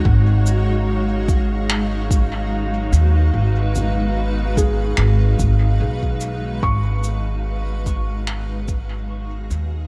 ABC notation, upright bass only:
X:1
M:4/4
L:1/8
Q:"Swing 16ths" 1/4=73
K:G#dor
V:1 name="Upright bass" clef=bass
G,,,6- G,,, D,, | G,,,4 G,,, G,,, B,,,2 | G,,,6- G,,, D,, |]